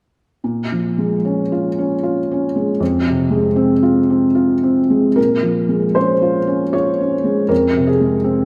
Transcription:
0.44 2.76 A#2 soft
0.72 1.14 F3 soft
0.98 1.40 G#3 soft
1.25 1.67 C#4 soft
1.52 1.93 F4 soft
1.78 2.19 C#4 soft
2.03 2.44 F4 soft
2.31 2.71 C#4 soft
2.56 2.81 G#3 soft
2.80 5.13 F2 soft
3.06 3.46 C3 soft
3.30 3.71 G#3 soft
3.56 3.97 C4 soft
3.83 4.24 F4 soft
4.10 4.52 C4 soft
4.35 4.79 F4 soft
4.63 5.07 C4 soft
4.90 5.17 G#3 soft
5.16 7.47 A#2 soft
5.16 5.95 A#4 medium
5.43 5.85 F3 soft
5.69 6.11 G#3 soft
5.95 6.37 C#4 soft
5.95 6.73 C5 medium
6.22 6.63 F4 soft
6.47 6.89 C#4 soft
6.73 7.15 F4 soft
6.73 7.50 C#5 medium
7.01 7.41 C#4 soft
7.24 7.50 G#3 soft
7.49 8.45 F2 soft
7.49 7.88 A#4 medium
7.74 8.16 C3 soft
7.87 8.45 G#4 soft
8.01 8.43 G#3 soft
8.24 8.45 C4 soft

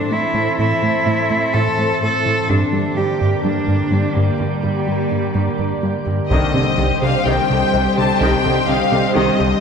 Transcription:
0.00 2.49 E3 medium
0.00 2.45 C4 medium
0.00 0.14 D4 medium
0.00 2.49 A4 medium
0.00 2.45 C5 medium
0.11 0.20 A2 soft
0.11 0.26 A3 soft
0.11 0.58 E4 medium
0.34 0.49 A2 medium
0.34 0.43 A2 soft
0.58 0.73 A2 medium
0.58 0.67 A2 soft
0.58 1.55 E4 medium
0.82 0.90 A2 soft
0.82 0.97 A3 soft
1.06 1.14 A2 soft
1.06 1.21 A3 soft
1.30 1.38 A2 soft
1.30 1.45 A2 medium
1.53 1.62 A2 soft
1.53 1.68 A2 medium
1.53 2.01 A4 medium
1.78 1.86 A2 soft
1.78 1.93 A2 medium
2.01 2.09 A2 soft
2.01 2.17 A3 soft
2.01 2.51 A4 medium
2.25 2.33 A2 soft
2.25 2.40 A2 soft
2.49 2.57 G2 soft
2.49 2.64 G2 medium
2.49 6.31 D3 medium
2.49 6.30 A#3 medium
2.49 2.98 D4 medium
2.49 6.29 G4 medium
2.49 6.30 D5 medium
2.72 2.80 G2 soft
2.72 2.87 G3 soft
2.96 3.04 G2 soft
2.96 3.12 G3 soft
2.96 3.44 G4 medium
3.21 3.29 G2 soft
3.21 3.35 G2 soft
3.44 3.52 G2 soft
3.44 3.59 G2 medium
3.44 4.17 D4 medium
3.67 3.75 G2 soft
3.67 3.82 G2 soft
3.91 3.99 G2 soft
3.91 4.07 G3 soft
4.15 4.23 G2 soft
4.15 4.31 G2 soft
4.15 4.40 A#3 medium
4.38 4.46 G2 soft
4.38 4.55 G2 medium
4.38 6.06 G3 medium
4.63 4.71 G2 soft
4.63 4.78 G3 medium
4.87 4.95 G2 soft
4.87 5.02 G3 soft
5.11 5.19 G2 soft
5.11 5.26 G2 soft
5.35 5.43 G2 soft
5.35 5.49 G2 medium
5.58 5.66 G2 soft
5.58 5.73 G2 soft
5.83 5.91 G2 soft
5.83 5.97 G3 soft
6.06 6.14 G2 soft
6.06 6.21 G2 soft
6.29 6.44 C2 medium
6.29 6.39 C3 soft
6.29 9.60 D3 soft
6.29 6.54 D3 soft
6.29 6.53 D#3 soft
6.29 9.60 G3 medium
6.29 9.60 G3 soft
6.29 9.60 C4 medium
6.29 9.60 G4 medium
6.29 9.60 G4 soft
6.29 9.60 C5 soft
6.29 6.97 D#5 medium
6.29 9.60 D#5 medium
6.29 taiko soft
6.54 6.62 C3 soft
6.54 6.68 C3 medium
6.54 6.64 D3 soft
6.77 6.92 C2 soft
6.77 6.86 C3 soft
6.77 6.87 D#3 soft
7.02 7.16 C3 medium
7.02 7.10 C3 soft
7.02 7.11 D3 soft
7.02 7.25 F5 medium
7.26 7.40 C2 medium
7.26 7.34 C3 soft
7.26 7.49 D#3 soft
7.26 7.97 G5 medium
7.50 7.64 C2 medium
7.50 7.58 C3 soft
7.50 7.59 D3 soft
7.73 7.88 C2 soft
7.73 7.82 C3 soft
7.73 7.81 D#3 soft
7.97 8.05 C3 soft
7.97 8.12 C3 soft
7.97 8.06 D3 soft
7.97 8.21 A5 medium
8.20 8.35 C2 medium
8.20 8.29 C3 soft
8.20 8.43 D#3 soft
8.20 8.68 G5 medium
8.45 8.53 C3 soft
8.45 8.60 C3 medium
8.45 8.53 D3 soft
8.67 8.83 C2 medium
8.67 8.76 C3 soft
8.67 8.76 D#3 soft
8.67 9.15 F5 medium
8.91 9.06 C3 soft
8.91 9.00 C3 soft
8.91 8.99 D3 soft
9.15 9.31 C2 medium
9.15 9.24 C3 soft
9.15 9.38 D#3 medium
9.15 9.60 D#5 medium
9.39 9.55 C2 medium
9.39 9.48 C3 soft
9.39 9.47 D3 soft

